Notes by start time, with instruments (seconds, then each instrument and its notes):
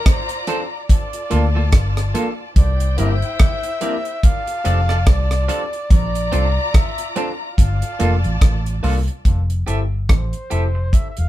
Already playing: string section F4 D5 A#5
0.06 flugelhorn C5, kick, cross-stick, closed hi-hat
0.29 closed hi-hat
0.47 tine electric piano C4 D4 F4 A4, clean electric guitar D4 A4 C5, closed hi-hat
0.73 flugelhorn D5
0.89 string section F4 D5 A5, kick, closed hi-hat
1.13 tine electric piano F4 A4, closed hi-hat
1.30 fingered electric bass D2, tine electric piano A#3 D4 F4 A4, clean electric guitar A#3 F4 A4, closed hi-hat
1.55 clean electric guitar A#3 F4 A4
1.72 fingered electric bass G1, kick, cross-stick, closed hi-hat
1.97 cross-stick, closed hi-hat
2.14 tine electric piano A#3 D4 F4 A4, clean electric guitar A#3 F4 A4, closed hi-hat
2.56 fingered electric bass C2, string section E4 C5 G5, flugelhorn D5, kick, closed hi-hat
2.80 closed hi-hat
2.97 fingered electric bass G1, tine electric piano A#3 D4 E4 G4, clean electric guitar C4 E4 A#4, flugelhorn E5, closed hi-hat
3.22 closed hi-hat
3.39 kick, cross-stick, closed hi-hat
3.63 closed hi-hat
3.81 tine electric piano A#3 D4 E4 G4, clean electric guitar C4 E4 A#4, closed hi-hat
4.05 closed hi-hat
4.23 string section F4 D5 A5, flugelhorn F5, kick, closed hi-hat
4.47 tine electric piano G4 A4, closed hi-hat
4.64 fingered electric bass F1, tine electric piano C4 D4 G4 A4, clean electric guitar F4 A4 D5, closed hi-hat
4.89 clean electric guitar F4 A4 D5, cross-stick
5.07 fingered electric bass C2, flugelhorn D5, kick, cross-stick, closed hi-hat
5.31 cross-stick, closed hi-hat
5.48 tine electric piano C4 D4 G4 A4, clean electric guitar F4 A4 D5, closed hi-hat
5.73 closed hi-hat
5.90 fingered electric bass A#1, string section F4 D5 A#5, flugelhorn D5, kick, closed hi-hat
6.15 closed hi-hat
6.32 fingered electric bass C2, tine electric piano C4 D4 F4 A4, clean electric guitar C4 D4 A4, closed hi-hat
6.74 flugelhorn E5, kick, cross-stick, closed hi-hat
6.98 closed hi-hat
7.16 clean electric guitar C4 D4 A4, tine electric piano C4 D4 F4 A4, closed hi-hat
7.42 flugelhorn F5
7.58 fingered electric bass G1, string section F4 D5 A5, kick, closed hi-hat
7.82 tine electric piano F4 A4, closed hi-hat
7.99 fingered electric bass F1, tine electric piano A#3 D4 F4 A4, clean electric guitar A#3 F4 A4, closed hi-hat
8.24 fingered electric bass A1, closed hi-hat
8.41 fingered electric bass A1, kick, cross-stick, closed hi-hat
8.66 closed hi-hat
8.83 fingered electric bass C2, tine electric piano A#3 D4 F4 A4, clean electric guitar A#3 F4 A4, open hi-hat
9.08 closed hi-hat
9.25 fingered electric bass F1, kick, closed hi-hat
9.50 closed hi-hat
9.67 fingered electric bass G1, tine electric piano C4 E4 G4 A4, clean electric guitar G4 A4 E5, closed hi-hat
10.09 fingered electric bass A1, flugelhorn C5, kick, cross-stick, closed hi-hat
10.33 closed hi-hat
10.50 fingered electric bass F1, tine electric piano C4 E4 G4 A4, clean electric guitar G4 A4 E5, closed hi-hat
10.75 muted clean electric guitar stroke
10.93 flugelhorn E5, kick, closed hi-hat
11.10 flugelhorn E5
11.17 fingered electric bass E1, tine electric piano G4 A4, flugelhorn F5, closed hi-hat